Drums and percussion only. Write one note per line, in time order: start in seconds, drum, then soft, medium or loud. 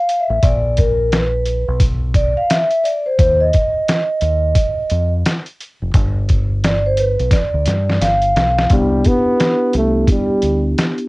0.09 closed hi-hat medium
0.43 kick loud
0.43 closed hi-hat medium
0.77 kick medium
0.77 closed hi-hat medium
1.12 snare loud
1.12 closed hi-hat medium
1.45 closed hi-hat medium
1.80 kick medium
1.80 closed hi-hat loud
2.14 kick medium
2.14 closed hi-hat medium
2.50 snare loud
2.50 closed hi-hat loud
2.71 closed hi-hat medium
2.85 closed hi-hat medium
3.19 kick loud
3.19 closed hi-hat medium
3.53 kick medium
3.53 closed hi-hat medium
3.88 snare loud
3.88 closed hi-hat medium
4.21 closed hi-hat medium
4.55 kick loud
4.55 closed hi-hat loud
4.90 closed hi-hat medium
5.26 snare loud
5.26 closed hi-hat loud
5.46 closed hi-hat soft
5.61 closed hi-hat medium
5.94 kick loud
5.94 closed hi-hat medium
6.29 kick medium
6.29 closed hi-hat medium
6.64 snare loud
6.64 closed hi-hat medium
6.97 closed hi-hat medium
7.20 closed hi-hat soft
7.31 kick loud
7.31 snare medium
7.31 closed hi-hat loud
7.66 snare medium
7.66 closed hi-hat medium
7.90 snare medium
8.02 snare medium
8.02 closed hi-hat loud
8.22 closed hi-hat soft
8.36 snare medium
8.36 closed hi-hat medium
8.58 snare medium
8.70 kick loud
8.70 closed hi-hat medium
9.04 kick medium
9.04 closed hi-hat medium
9.40 snare loud
9.40 closed hi-hat medium
9.73 closed hi-hat medium
10.07 kick loud
10.07 closed hi-hat medium
10.42 closed hi-hat medium
10.78 snare loud
10.78 closed hi-hat medium
10.98 closed hi-hat soft